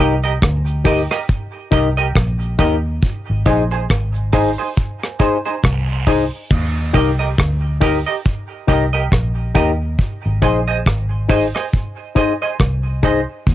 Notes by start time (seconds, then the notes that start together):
Already playing: D#4 G4
0.00 C2 G4 A#4 D#5
0.23 G4 A#4 D#5, cabasa
0.42 D2, kick, cross-stick
0.67 cabasa
0.84 D#4 G4 A#4 D#5, kick, open hi-hat, cabasa
1.11 G4 A#4 D#5, cross-stick
1.28 kick, hi-hat pedal, cabasa
1.71 C2 D#4 G4 A#4 D#5, kick, closed hi-hat, cabasa
1.97 G4 A#4 D#5, cabasa
2.15 A#1, kick, cross-stick
2.41 cabasa
2.59 D#2 D#4 G4 A#4 D#5, kick, closed hi-hat, cabasa
3.02 kick, cabasa
3.30 G#1
3.45 A#1 D#4 G#4 C5 D#5, kick, closed hi-hat, cabasa
3.71 D#4 G#4 C5, cabasa
3.90 G#1, kick, cross-stick
4.15 cabasa
4.33 D#4 G#4 C5 D#5, kick, open hi-hat, cabasa
4.58 D#4 G#4 C5
4.76 kick, hi-hat pedal, cabasa
5.04 cross-stick
5.20 D#4 G#4 C5 D#5, kick, closed hi-hat, cabasa
5.45 D#4 G#4 C5 D#5, cabasa
5.64 C2, kick, cross-stick, long guiro
5.89 cabasa
6.07 D#4 G#4 C5 D#5, kick, open hi-hat, cabasa
6.51 D#2, kick, crash
6.94 C2 D#4 G4 A#4 D#5, kick, open hi-hat
7.19 G4 A#4 D#5
7.38 D2, kick, cross-stick, hi-hat pedal
7.81 D#4 G4 A#4 D#5, kick, open hi-hat
8.06 G4 A#4 D#5
8.25 kick, hi-hat pedal
8.67 C2 D#4 G4 A#4 D#5, kick, closed hi-hat
8.93 G4 A#4 D#5
9.12 A#1, kick, cross-stick
9.55 D#2 D#4 G4 A#4 D#5, kick, closed hi-hat
9.99 kick
10.26 G#1
10.42 A#1 D#4 G#4 C5 D#5, kick, closed hi-hat
10.68 G#4 C5 D#5
10.86 G#1, kick, cross-stick
11.28 D#4 G#4 C5 D#5, kick, open hi-hat
11.55 G#4 C5 D#5, cross-stick
11.73 kick, hi-hat pedal
12.15 D#4 G#4 C5 D#5, kick, closed hi-hat
12.42 G#4 C5 D#5
12.60 C2, kick, cross-stick
13.03 D#4 G#4 C5 D#5, kick, closed hi-hat
13.47 D#2, kick